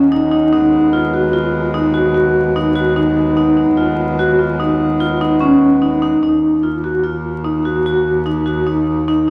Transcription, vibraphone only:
0, 0, Header, 1, 2, 480
1, 0, Start_track
1, 0, Key_signature, -6, "minor"
1, 0, Tempo, 406780
1, 625, Time_signature, 7, 2, 24, 8
1, 10974, End_track
2, 0, Start_track
2, 0, Title_t, "Vibraphone"
2, 0, Program_c, 0, 11
2, 140, Note_on_c, 0, 63, 78
2, 342, Note_off_c, 0, 63, 0
2, 371, Note_on_c, 0, 63, 74
2, 577, Note_off_c, 0, 63, 0
2, 622, Note_on_c, 0, 63, 80
2, 1022, Note_off_c, 0, 63, 0
2, 1099, Note_on_c, 0, 65, 69
2, 1300, Note_off_c, 0, 65, 0
2, 1341, Note_on_c, 0, 66, 63
2, 1542, Note_off_c, 0, 66, 0
2, 1572, Note_on_c, 0, 65, 73
2, 1975, Note_off_c, 0, 65, 0
2, 2054, Note_on_c, 0, 63, 73
2, 2258, Note_off_c, 0, 63, 0
2, 2288, Note_on_c, 0, 66, 60
2, 2494, Note_off_c, 0, 66, 0
2, 2531, Note_on_c, 0, 66, 65
2, 2935, Note_off_c, 0, 66, 0
2, 3022, Note_on_c, 0, 63, 72
2, 3222, Note_off_c, 0, 63, 0
2, 3252, Note_on_c, 0, 66, 68
2, 3456, Note_off_c, 0, 66, 0
2, 3497, Note_on_c, 0, 63, 69
2, 3898, Note_off_c, 0, 63, 0
2, 3975, Note_on_c, 0, 63, 81
2, 4178, Note_off_c, 0, 63, 0
2, 4212, Note_on_c, 0, 63, 61
2, 4416, Note_off_c, 0, 63, 0
2, 4451, Note_on_c, 0, 65, 70
2, 4854, Note_off_c, 0, 65, 0
2, 4945, Note_on_c, 0, 66, 73
2, 5143, Note_off_c, 0, 66, 0
2, 5179, Note_on_c, 0, 65, 59
2, 5380, Note_off_c, 0, 65, 0
2, 5427, Note_on_c, 0, 63, 66
2, 5824, Note_off_c, 0, 63, 0
2, 5904, Note_on_c, 0, 65, 64
2, 6102, Note_off_c, 0, 65, 0
2, 6150, Note_on_c, 0, 63, 69
2, 6346, Note_off_c, 0, 63, 0
2, 6377, Note_on_c, 0, 61, 75
2, 6778, Note_off_c, 0, 61, 0
2, 6865, Note_on_c, 0, 63, 65
2, 7063, Note_off_c, 0, 63, 0
2, 7106, Note_on_c, 0, 63, 71
2, 7304, Note_off_c, 0, 63, 0
2, 7350, Note_on_c, 0, 63, 68
2, 7746, Note_off_c, 0, 63, 0
2, 7826, Note_on_c, 0, 65, 54
2, 8024, Note_off_c, 0, 65, 0
2, 8071, Note_on_c, 0, 66, 60
2, 8267, Note_off_c, 0, 66, 0
2, 8302, Note_on_c, 0, 65, 62
2, 8702, Note_off_c, 0, 65, 0
2, 8784, Note_on_c, 0, 63, 63
2, 8983, Note_off_c, 0, 63, 0
2, 9029, Note_on_c, 0, 66, 58
2, 9227, Note_off_c, 0, 66, 0
2, 9275, Note_on_c, 0, 66, 64
2, 9669, Note_off_c, 0, 66, 0
2, 9744, Note_on_c, 0, 63, 65
2, 9944, Note_off_c, 0, 63, 0
2, 9980, Note_on_c, 0, 66, 60
2, 10181, Note_off_c, 0, 66, 0
2, 10225, Note_on_c, 0, 63, 65
2, 10624, Note_off_c, 0, 63, 0
2, 10716, Note_on_c, 0, 63, 80
2, 10911, Note_off_c, 0, 63, 0
2, 10974, End_track
0, 0, End_of_file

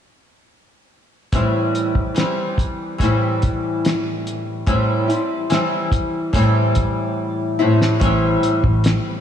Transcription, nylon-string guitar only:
0, 0, Header, 1, 2, 480
1, 0, Start_track
1, 0, Key_signature, 0, "minor"
1, 0, Tempo, 836820
1, 761, Time_signature, 4, 2, 24, 8
1, 5280, End_track
2, 0, Start_track
2, 0, Title_t, "Nylon-string guitar"
2, 0, Program_c, 0, 24
2, 757, Note_on_c, 0, 45, 70
2, 764, Note_on_c, 0, 52, 74
2, 766, Note_on_c, 0, 55, 74
2, 771, Note_on_c, 0, 60, 86
2, 775, Note_on_c, 0, 64, 81
2, 1229, Note_off_c, 0, 52, 0
2, 1231, Note_on_c, 0, 52, 56
2, 1238, Note_off_c, 0, 55, 0
2, 1239, Note_off_c, 0, 45, 0
2, 1240, Note_on_c, 0, 55, 55
2, 1245, Note_off_c, 0, 60, 0
2, 1247, Note_on_c, 0, 60, 58
2, 1248, Note_off_c, 0, 64, 0
2, 1251, Note_on_c, 0, 64, 58
2, 1711, Note_on_c, 0, 45, 73
2, 1719, Note_off_c, 0, 52, 0
2, 1721, Note_on_c, 0, 52, 76
2, 1727, Note_off_c, 0, 55, 0
2, 1729, Note_on_c, 0, 55, 79
2, 1733, Note_off_c, 0, 60, 0
2, 1735, Note_on_c, 0, 60, 84
2, 1741, Note_off_c, 0, 64, 0
2, 1744, Note_on_c, 0, 64, 91
2, 2669, Note_off_c, 0, 45, 0
2, 2675, Note_on_c, 0, 45, 74
2, 2677, Note_off_c, 0, 52, 0
2, 2679, Note_off_c, 0, 55, 0
2, 2680, Note_on_c, 0, 52, 84
2, 2682, Note_on_c, 0, 55, 79
2, 2684, Note_off_c, 0, 60, 0
2, 2686, Note_on_c, 0, 60, 85
2, 2687, Note_off_c, 0, 64, 0
2, 2690, Note_on_c, 0, 64, 84
2, 2905, Note_off_c, 0, 64, 0
2, 2912, Note_on_c, 0, 64, 46
2, 2918, Note_off_c, 0, 45, 0
2, 2919, Note_off_c, 0, 60, 0
2, 2920, Note_off_c, 0, 52, 0
2, 2921, Note_off_c, 0, 55, 0
2, 2925, Note_on_c, 0, 60, 45
2, 2934, Note_on_c, 0, 55, 40
2, 3153, Note_on_c, 0, 52, 60
2, 3154, Note_off_c, 0, 55, 0
2, 3156, Note_off_c, 0, 64, 0
2, 3161, Note_off_c, 0, 60, 0
2, 3161, Note_on_c, 0, 55, 59
2, 3168, Note_on_c, 0, 60, 59
2, 3175, Note_on_c, 0, 64, 56
2, 3630, Note_on_c, 0, 45, 77
2, 3635, Note_off_c, 0, 52, 0
2, 3638, Note_off_c, 0, 55, 0
2, 3638, Note_on_c, 0, 52, 85
2, 3640, Note_off_c, 0, 60, 0
2, 3640, Note_on_c, 0, 55, 86
2, 3642, Note_on_c, 0, 60, 87
2, 3643, Note_off_c, 0, 64, 0
2, 3645, Note_on_c, 0, 64, 88
2, 4351, Note_off_c, 0, 64, 0
2, 4353, Note_on_c, 0, 64, 67
2, 4355, Note_off_c, 0, 45, 0
2, 4356, Note_off_c, 0, 60, 0
2, 4358, Note_on_c, 0, 60, 61
2, 4359, Note_off_c, 0, 55, 0
2, 4361, Note_on_c, 0, 55, 57
2, 4365, Note_off_c, 0, 52, 0
2, 4367, Note_on_c, 0, 52, 56
2, 4369, Note_on_c, 0, 45, 54
2, 4580, Note_off_c, 0, 45, 0
2, 4587, Note_on_c, 0, 45, 79
2, 4591, Note_off_c, 0, 52, 0
2, 4596, Note_off_c, 0, 64, 0
2, 4598, Note_off_c, 0, 55, 0
2, 4598, Note_on_c, 0, 52, 78
2, 4599, Note_off_c, 0, 60, 0
2, 4605, Note_on_c, 0, 55, 89
2, 4614, Note_on_c, 0, 60, 83
2, 4620, Note_on_c, 0, 64, 87
2, 5280, Note_off_c, 0, 45, 0
2, 5280, Note_off_c, 0, 52, 0
2, 5280, Note_off_c, 0, 55, 0
2, 5280, Note_off_c, 0, 60, 0
2, 5280, Note_off_c, 0, 64, 0
2, 5280, End_track
0, 0, End_of_file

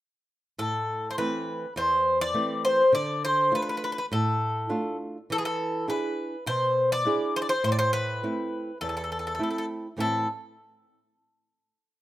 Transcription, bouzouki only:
0, 0, Header, 1, 2, 480
1, 0, Start_track
1, 0, Key_signature, 0, "minor"
1, 0, Tempo, 587084
1, 479, Time_signature, 4, 2, 24, 8
1, 9823, End_track
2, 0, Start_track
2, 0, Title_t, "Bouzouki"
2, 0, Program_c, 0, 25
2, 483, Note_on_c, 0, 69, 71
2, 901, Note_off_c, 0, 69, 0
2, 904, Note_on_c, 0, 72, 56
2, 960, Note_off_c, 0, 72, 0
2, 965, Note_on_c, 0, 71, 77
2, 1409, Note_off_c, 0, 71, 0
2, 1451, Note_on_c, 0, 72, 76
2, 1780, Note_off_c, 0, 72, 0
2, 1810, Note_on_c, 0, 74, 98
2, 2161, Note_off_c, 0, 74, 0
2, 2164, Note_on_c, 0, 72, 91
2, 2385, Note_off_c, 0, 72, 0
2, 2410, Note_on_c, 0, 74, 87
2, 2651, Note_off_c, 0, 74, 0
2, 2654, Note_on_c, 0, 72, 78
2, 2894, Note_off_c, 0, 72, 0
2, 2903, Note_on_c, 0, 71, 71
2, 2949, Note_off_c, 0, 71, 0
2, 2962, Note_on_c, 0, 71, 51
2, 3010, Note_off_c, 0, 71, 0
2, 3020, Note_on_c, 0, 71, 56
2, 3070, Note_off_c, 0, 71, 0
2, 3084, Note_on_c, 0, 71, 55
2, 3129, Note_off_c, 0, 71, 0
2, 3139, Note_on_c, 0, 71, 62
2, 3191, Note_off_c, 0, 71, 0
2, 3206, Note_on_c, 0, 71, 54
2, 3247, Note_off_c, 0, 71, 0
2, 3257, Note_on_c, 0, 71, 60
2, 3311, Note_off_c, 0, 71, 0
2, 3374, Note_on_c, 0, 69, 64
2, 4055, Note_off_c, 0, 69, 0
2, 4351, Note_on_c, 0, 69, 85
2, 4391, Note_off_c, 0, 69, 0
2, 4401, Note_on_c, 0, 68, 69
2, 4448, Note_off_c, 0, 68, 0
2, 4458, Note_on_c, 0, 69, 76
2, 4788, Note_off_c, 0, 69, 0
2, 4821, Note_on_c, 0, 71, 73
2, 5260, Note_off_c, 0, 71, 0
2, 5292, Note_on_c, 0, 72, 90
2, 5656, Note_off_c, 0, 72, 0
2, 5659, Note_on_c, 0, 74, 104
2, 6017, Note_off_c, 0, 74, 0
2, 6020, Note_on_c, 0, 72, 82
2, 6062, Note_off_c, 0, 72, 0
2, 6065, Note_on_c, 0, 74, 64
2, 6121, Note_off_c, 0, 74, 0
2, 6125, Note_on_c, 0, 72, 85
2, 6239, Note_off_c, 0, 72, 0
2, 6249, Note_on_c, 0, 72, 86
2, 6301, Note_off_c, 0, 72, 0
2, 6310, Note_on_c, 0, 74, 76
2, 6363, Note_off_c, 0, 74, 0
2, 6366, Note_on_c, 0, 72, 89
2, 6479, Note_off_c, 0, 72, 0
2, 6483, Note_on_c, 0, 71, 93
2, 7172, Note_off_c, 0, 71, 0
2, 7203, Note_on_c, 0, 69, 64
2, 7259, Note_off_c, 0, 69, 0
2, 7269, Note_on_c, 0, 69, 43
2, 7322, Note_off_c, 0, 69, 0
2, 7332, Note_on_c, 0, 69, 54
2, 7379, Note_off_c, 0, 69, 0
2, 7389, Note_on_c, 0, 69, 37
2, 7445, Note_off_c, 0, 69, 0
2, 7455, Note_on_c, 0, 69, 43
2, 7505, Note_off_c, 0, 69, 0
2, 7515, Note_on_c, 0, 69, 38
2, 7568, Note_off_c, 0, 69, 0
2, 7578, Note_on_c, 0, 69, 49
2, 7632, Note_off_c, 0, 69, 0
2, 7642, Note_on_c, 0, 69, 43
2, 7697, Note_off_c, 0, 69, 0
2, 7712, Note_on_c, 0, 69, 41
2, 7762, Note_off_c, 0, 69, 0
2, 7771, Note_on_c, 0, 69, 42
2, 7824, Note_off_c, 0, 69, 0
2, 7834, Note_on_c, 0, 69, 54
2, 7887, Note_off_c, 0, 69, 0
2, 8179, Note_on_c, 0, 69, 75
2, 8395, Note_off_c, 0, 69, 0
2, 9823, End_track
0, 0, End_of_file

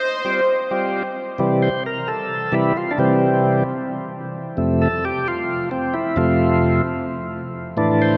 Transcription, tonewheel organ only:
0, 0, Header, 1, 2, 480
1, 0, Start_track
1, 0, Tempo, 455235
1, 1468, Time_signature, 7, 3, 24, 8
1, 8616, End_track
2, 0, Start_track
2, 0, Title_t, "Tonewheel organ"
2, 0, Program_c, 0, 16
2, 258, Note_on_c, 0, 55, 61
2, 263, Note_on_c, 0, 60, 53
2, 264, Note_on_c, 0, 65, 53
2, 269, Note_on_c, 0, 67, 65
2, 431, Note_off_c, 0, 55, 0
2, 433, Note_off_c, 0, 60, 0
2, 434, Note_off_c, 0, 65, 0
2, 437, Note_off_c, 0, 67, 0
2, 747, Note_on_c, 0, 55, 79
2, 749, Note_on_c, 0, 65, 67
2, 752, Note_on_c, 0, 60, 73
2, 753, Note_on_c, 0, 67, 83
2, 1083, Note_off_c, 0, 55, 0
2, 1084, Note_off_c, 0, 65, 0
2, 1086, Note_off_c, 0, 60, 0
2, 1086, Note_off_c, 0, 67, 0
2, 1460, Note_on_c, 0, 48, 50
2, 1470, Note_on_c, 0, 52, 48
2, 1473, Note_on_c, 0, 55, 56
2, 1713, Note_on_c, 0, 72, 93
2, 1783, Note_off_c, 0, 48, 0
2, 1788, Note_off_c, 0, 52, 0
2, 1789, Note_off_c, 0, 55, 0
2, 1934, Note_off_c, 0, 72, 0
2, 1963, Note_on_c, 0, 70, 85
2, 2192, Note_on_c, 0, 69, 82
2, 2202, Note_off_c, 0, 70, 0
2, 2657, Note_on_c, 0, 48, 42
2, 2658, Note_on_c, 0, 52, 38
2, 2666, Note_on_c, 0, 55, 49
2, 2682, Note_on_c, 0, 64, 76
2, 2684, Note_off_c, 0, 69, 0
2, 2877, Note_off_c, 0, 48, 0
2, 2878, Note_off_c, 0, 52, 0
2, 2882, Note_off_c, 0, 55, 0
2, 2922, Note_off_c, 0, 64, 0
2, 2924, Note_on_c, 0, 65, 73
2, 3068, Note_on_c, 0, 62, 52
2, 3086, Note_off_c, 0, 65, 0
2, 3140, Note_on_c, 0, 48, 51
2, 3145, Note_off_c, 0, 62, 0
2, 3150, Note_on_c, 0, 55, 57
2, 3151, Note_on_c, 0, 52, 47
2, 3160, Note_on_c, 0, 60, 78
2, 3827, Note_off_c, 0, 48, 0
2, 3832, Note_off_c, 0, 60, 0
2, 3833, Note_off_c, 0, 52, 0
2, 3833, Note_off_c, 0, 55, 0
2, 4819, Note_on_c, 0, 41, 58
2, 4826, Note_on_c, 0, 48, 50
2, 4829, Note_on_c, 0, 57, 59
2, 5078, Note_on_c, 0, 69, 96
2, 5143, Note_off_c, 0, 41, 0
2, 5146, Note_off_c, 0, 48, 0
2, 5147, Note_off_c, 0, 57, 0
2, 5320, Note_off_c, 0, 69, 0
2, 5324, Note_on_c, 0, 67, 94
2, 5563, Note_off_c, 0, 67, 0
2, 5567, Note_on_c, 0, 65, 79
2, 6004, Note_off_c, 0, 65, 0
2, 6023, Note_on_c, 0, 60, 82
2, 6260, Note_on_c, 0, 64, 76
2, 6273, Note_off_c, 0, 60, 0
2, 6497, Note_on_c, 0, 41, 54
2, 6502, Note_on_c, 0, 48, 52
2, 6506, Note_on_c, 0, 65, 80
2, 6511, Note_off_c, 0, 64, 0
2, 6514, Note_on_c, 0, 57, 60
2, 7186, Note_off_c, 0, 65, 0
2, 7187, Note_off_c, 0, 41, 0
2, 7190, Note_off_c, 0, 48, 0
2, 7196, Note_off_c, 0, 57, 0
2, 8190, Note_on_c, 0, 45, 56
2, 8195, Note_on_c, 0, 52, 51
2, 8199, Note_on_c, 0, 62, 58
2, 8453, Note_on_c, 0, 72, 100
2, 8616, Note_off_c, 0, 45, 0
2, 8616, Note_off_c, 0, 52, 0
2, 8616, Note_off_c, 0, 62, 0
2, 8616, Note_off_c, 0, 72, 0
2, 8616, End_track
0, 0, End_of_file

